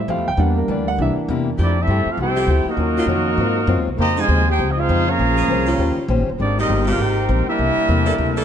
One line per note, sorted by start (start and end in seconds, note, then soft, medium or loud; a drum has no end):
0.08 0.18 F2 loud
0.08 0.28 F3 medium
0.08 0.28 A3 medium
0.08 0.29 E4 medium
0.08 0.29 G4 medium
0.08 0.27 F5 medium
0.18 0.27 E2 medium
0.28 0.37 C2 medium
0.28 0.38 G5 loud
0.36 0.67 E2 loud
0.36 0.57 E3 medium
0.36 0.95 G3 medium
0.36 0.58 A#3 medium
0.36 0.95 A#3 medium
0.36 0.95 D4 medium
0.36 0.58 D4 medium
0.36 0.59 G4 medium
0.36 0.57 F#5 medium
0.58 0.68 A#4 medium
0.68 0.97 D2 loud
0.68 0.88 E3 medium
0.68 0.88 A#3 medium
0.68 0.88 D4 medium
0.68 0.89 G4 medium
0.68 0.88 D5 medium
0.88 0.99 F#5 loud
0.98 1.16 C2 loud
0.98 1.18 C3 medium
0.98 1.56 E3 medium
0.98 1.18 A#3 soft
0.98 1.56 A#3 medium
0.98 1.56 D4 medium
0.98 1.19 E4 medium
0.98 1.19 G4 medium
0.98 1.12 E5 medium
1.17 muted upright bass stroke soft
1.28 1.57 E2 loud
1.28 1.48 C3 medium
1.28 1.49 A#3 medium
1.28 1.49 E4 medium
1.28 1.49 G4 medium
1.58 1.87 F2 medium
1.58 1.71 F3 medium
1.58 1.78 F3 soft
1.58 1.71 A3 medium
1.58 1.79 A3 medium
1.58 1.71 E4 medium
1.58 1.79 E4 medium
1.58 1.71 G4 medium
1.58 1.79 G4 medium
1.62 1.78 A#3 medium
1.62 1.78 D4 medium
1.62 1.78 E4 medium
1.62 1.78 G4 medium
1.62 1.78 D5 medium
1.80 2.09 A3 medium
1.80 2.08 C4 medium
1.80 2.09 C4 medium
1.80 2.09 E4 medium
1.80 2.09 G4 medium
1.80 2.09 A4 medium
1.80 2.09 E5 medium
1.88 2.05 G2 medium
1.88 2.08 F3 medium
1.88 2.08 A3 medium
1.88 2.09 E4 medium
1.88 2.09 G4 medium
2.06 2.20 A3 medium
2.06 2.20 C4 medium
2.06 2.20 F4 medium
2.06 muted upright bass stroke soft
2.11 2.20 C4 medium
2.11 2.20 G4 medium
2.11 2.20 A4 medium
2.11 2.20 F5 medium
2.17 2.46 C2 medium
2.17 2.38 F3 soft
2.17 2.38 A3 soft
2.17 2.65 C4 medium
2.17 2.39 E4 medium
2.17 2.65 E4 medium
2.17 2.64 G4 medium
2.17 2.39 G4 medium
2.22 2.65 A4 medium
2.22 2.66 C5 medium
2.22 2.65 G5 loud
2.36 2.76 F3 loud
2.36 2.76 A3 medium
2.36 2.75 E4 medium
2.36 2.76 G4 loud
2.47 2.65 D2 loud
2.47 2.68 F3 medium
2.47 2.69 A3 medium
2.47 2.69 E4 medium
2.47 2.69 G4 medium
2.65 3.88 A#3 medium
2.65 3.88 D#4 medium
2.65 3.87 F#4 medium
2.65 muted upright bass stroke soft
2.70 3.40 C#4 medium
2.70 3.88 F#4 medium
2.70 3.89 A#4 medium
2.70 3.88 D#5 loud
2.77 3.06 D#2 medium
2.77 2.98 D#3 soft
2.77 2.98 F#3 medium
2.77 2.98 C#4 medium
2.77 2.99 F4 medium
2.98 3.05 D#3 medium
2.98 3.05 F#3 medium
2.98 3.05 C#4 medium
2.98 3.05 F4 loud
3.06 3.36 F2 loud
3.06 3.27 D#3 medium
3.06 3.28 F#3 medium
3.06 3.28 C#4 medium
3.06 3.29 F4 medium
3.37 3.67 G#2 medium
3.37 3.58 G#2 medium
3.37 3.58 F#3 medium
3.37 3.59 C4 medium
3.37 3.59 F4 medium
3.67 3.78 F#2 loud
3.67 3.87 G#2 medium
3.67 3.88 F#3 medium
3.67 3.88 C4 medium
3.67 3.88 F4 medium
3.78 3.87 D#2 medium
3.88 3.97 C2 medium
3.97 4.27 F2 medium
3.97 4.17 C#3 soft
3.97 4.18 F3 medium
3.97 4.15 A#3 loud
3.97 4.18 C4 medium
3.97 4.19 D#4 medium
3.97 4.16 G4 loud
3.97 4.17 C5 loud
3.97 4.16 D#5 loud
3.97 4.17 A#5 loud
4.17 4.47 C3 loud
4.17 4.25 C#3 medium
4.17 4.25 F3 medium
4.17 4.47 F3 loud
4.17 4.47 G#3 loud
4.17 4.25 C4 medium
4.17 4.25 D#4 loud
4.17 4.48 F4 medium
4.17 4.48 C5 medium
4.17 4.48 D#5 loud
4.17 4.48 G#5 loud
4.28 4.58 D#2 loud
4.28 4.48 C#3 medium
4.28 4.48 F3 medium
4.28 4.49 C4 medium
4.28 4.49 D#4 medium
4.47 4.68 D#4 medium
4.47 4.67 G4 medium
4.47 4.68 G#4 medium
4.47 4.69 C5 loud
4.47 4.69 G5 loud
4.58 4.88 C#2 loud
4.58 4.78 C#3 medium
4.58 4.78 F3 medium
4.58 4.79 C4 medium
4.58 4.80 D#4 medium
4.71 4.78 D#5 medium
4.77 5.07 G#3 medium
4.77 5.07 C4 medium
4.77 5.08 D#4 loud
4.77 5.07 F4 loud
4.77 5.08 G#4 loud
4.77 5.08 C5 loud
4.77 5.08 F5 loud
4.88 5.18 F2 loud
4.88 5.08 C#3 medium
4.88 5.08 F3 medium
4.88 5.08 C4 medium
4.88 5.09 D#4 medium
5.08 5.98 F3 loud
5.08 5.97 A#3 loud
5.08 5.98 C#4 loud
5.08 5.80 G#4 medium
5.08 5.98 C#5 loud
5.08 5.98 F5 medium
5.08 5.98 A#5 loud
5.18 5.48 A#1 medium
5.18 5.38 A#3 soft
5.18 5.39 C#4 medium
5.18 5.39 G#4 medium
5.18 5.39 C5 medium
5.36 5.65 C#3 loud
5.36 5.65 A#3 medium
5.36 5.65 C4 medium
5.36 5.65 G#4 loud
5.48 5.77 C2 loud
5.48 5.68 A#3 medium
5.48 5.68 C#4 medium
5.48 5.68 G#4 medium
5.48 5.69 C5 medium
5.66 6.06 C#3 loud
5.66 6.06 G3 loud
5.66 6.06 C#4 loud
5.66 6.06 F4 loud
5.78 5.96 D#2 medium
5.78 5.98 D#3 medium
5.78 5.98 C#4 medium
5.78 5.99 G4 medium
5.78 5.99 C5 medium
5.97 muted upright bass stroke soft
6.08 6.19 A#1 loud
6.08 6.28 D#3 medium
6.08 6.28 C#4 medium
6.08 6.29 G4 medium
6.08 6.29 C5 medium
6.19 6.29 G1 medium
6.29 6.38 D#1 medium
6.38 6.68 G#1 medium
6.38 6.58 G#3 medium
6.38 6.58 A#3 medium
6.38 6.58 C4 medium
6.38 6.57 D4 medium
6.38 6.57 D#4 medium
6.38 6.59 G4 medium
6.38 6.58 G4 medium
6.38 6.59 A#4 medium
6.38 6.57 D5 medium
6.58 6.86 C3 medium
6.58 6.85 G3 medium
6.58 6.86 G#3 medium
6.58 6.86 A#3 medium
6.58 6.85 C4 medium
6.58 6.87 C4 medium
6.58 6.85 D#4 medium
6.58 6.85 G4 loud
6.58 6.86 G4 medium
6.58 6.87 A#4 medium
6.58 6.87 D#5 loud
6.68 6.98 G1 loud
6.68 6.88 G#3 medium
6.68 6.88 C4 medium
6.68 6.89 G4 medium
6.68 6.89 A#4 medium
6.87 7.26 C3 loud
6.87 7.26 G#3 loud
6.87 7.26 A#3 loud
6.87 7.00 D4 medium
6.87 7.00 F4 medium
6.87 7.26 G4 loud
6.87 7.00 G4 medium
6.87 7.00 A#4 medium
6.87 7.00 F5 medium
6.98 7.27 G#1 medium
6.98 7.18 G#3 soft
6.98 7.19 C4 medium
6.98 7.48 C4 medium
6.98 7.48 D#4 medium
6.98 7.19 G4 soft
6.98 7.48 G4 medium
6.98 7.20 A#4 medium
6.98 7.49 A#4 medium
6.98 7.48 C5 medium
6.98 7.48 G5 loud
7.28 7.46 A#1 loud
7.28 7.48 G#3 medium
7.28 7.48 C4 medium
7.28 7.49 G4 medium
7.28 7.49 A#4 medium
7.47 8.45 G3 medium
7.47 8.45 A#3 medium
7.47 8.45 D4 medium
7.47 8.45 E4 loud
7.47 8.45 G4 medium
7.47 8.45 A#4 medium
7.47 8.45 E5 loud
7.47 muted upright bass stroke soft
7.58 7.76 C2 medium
7.58 7.78 C3 soft
7.58 7.78 A#3 medium
7.58 7.79 E4 medium
7.58 7.79 A4 medium
7.77 muted upright bass stroke soft
7.88 8.17 E2 loud
7.88 8.08 C3 medium
7.88 8.08 A#3 medium
7.88 8.09 E4 medium
7.88 8.09 A4 medium
8.06 8.14 E3 loud
8.06 8.14 A#3 medium
8.06 8.14 D4 loud
8.06 8.14 A4 loud
8.18 8.45 D2 loud
8.18 8.38 C3 medium
8.18 8.39 A#3 medium
8.18 8.39 E4 medium
8.18 8.40 A4 medium
8.36 8.44 E3 loud
8.36 8.44 A#3 medium
8.36 8.44 D4 medium
8.36 8.45 A4 loud